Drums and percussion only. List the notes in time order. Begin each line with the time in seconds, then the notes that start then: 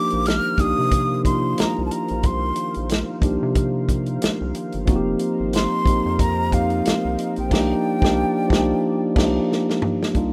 0.10 closed hi-hat
0.26 snare, closed hi-hat
0.58 kick, closed hi-hat
0.91 kick, closed hi-hat
1.25 kick, closed hi-hat
1.58 snare, closed hi-hat
1.91 closed hi-hat
2.08 closed hi-hat
2.23 kick, closed hi-hat
2.56 closed hi-hat
2.74 closed hi-hat
2.89 snare, closed hi-hat
3.22 kick, closed hi-hat
3.55 kick, closed hi-hat
3.89 kick, closed hi-hat
4.06 closed hi-hat
4.22 snare, closed hi-hat
4.55 closed hi-hat
4.72 closed hi-hat
4.87 kick, closed hi-hat
5.19 closed hi-hat
5.53 snare, closed hi-hat
5.86 kick, closed hi-hat
6.19 kick, closed hi-hat
6.52 kick, closed hi-hat
6.70 closed hi-hat
6.85 snare, closed hi-hat
7.19 closed hi-hat
7.36 closed hi-hat
7.51 kick, snare, crash
8.02 kick, snare
8.50 kick, snare
9.16 kick, snare, crash
9.52 snare
9.70 snare
9.82 mid tom
10.03 snare
10.15 kick, closed hi-hat